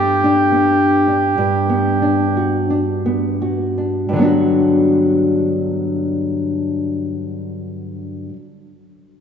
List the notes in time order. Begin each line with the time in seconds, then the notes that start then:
Already playing: G2 B3 D4 G4
0.24 D4
0.52 B3
1.08 D4
1.38 G2
1.69 B3
2.02 D4
2.37 F#4
2.70 D4
3.06 B3
3.42 F#4
3.78 D4
4.09 G2
4.13 D3 F#3
4.19 B3 D4
4.24 F#4